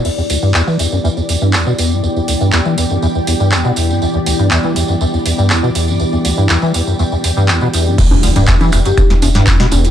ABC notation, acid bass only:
X:1
M:4/4
L:1/16
Q:1/4=121
K:Em
V:1 name="Acid bass" clef=bass
E,, E,, D,, G,, E,, E, E,, F,, E,, E,, E,, G,, E,, B,, E,, G,, | E,, E,, D,, G,, E,, E, E,, F,, E,, E,, E,, G,, E,, B,, E,, G,, | E,, E,, D,, G,, E,, E, E,, F,, E,, E,, E,, G,, E,, B,, E,, G,, | E,, E,, D,, G,, E,, E, E,, F,, E,, E,, E,, G,, E,, B,, E,, G,, |
E,, E,, D,, G,, E,, E, E,, F,, E,, E,, E,, G,, E,, B,, E,, G,, |]